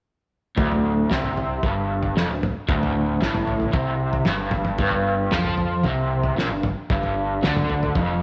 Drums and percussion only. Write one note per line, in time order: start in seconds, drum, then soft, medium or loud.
0.58 kick loud
0.58 floor tom medium
0.72 floor tom medium
1.11 snare medium
1.11 floor tom medium
1.23 floor tom medium
1.37 floor tom medium
1.63 kick loud
1.63 floor tom medium
2.03 floor tom medium
2.17 snare medium
2.43 floor tom medium
2.43 mid tom medium
2.69 kick loud
2.69 floor tom medium
2.83 floor tom medium
3.22 snare medium
3.22 floor tom medium
3.35 floor tom medium
3.35 mid tom medium
3.47 floor tom medium
3.60 floor tom medium
3.73 kick loud
3.73 floor tom medium
4.13 floor tom medium
4.25 snare medium
4.25 mid tom medium
4.51 floor tom medium
4.51 mid tom medium
4.65 mid tom medium
4.78 kick loud
4.78 floor tom medium
4.91 floor tom medium
5.31 snare medium
5.31 floor tom medium
5.44 floor tom medium
5.58 floor tom medium
5.83 kick loud
5.83 floor tom medium
6.24 floor tom medium
6.39 snare medium
6.63 floor tom medium
6.63 mid tom medium
6.90 kick loud
6.90 floor tom medium
7.03 floor tom medium
7.43 snare medium
7.43 floor tom medium
7.57 floor tom medium
7.57 mid tom medium
7.70 floor tom medium
7.83 floor tom medium
7.95 kick loud
7.95 floor tom medium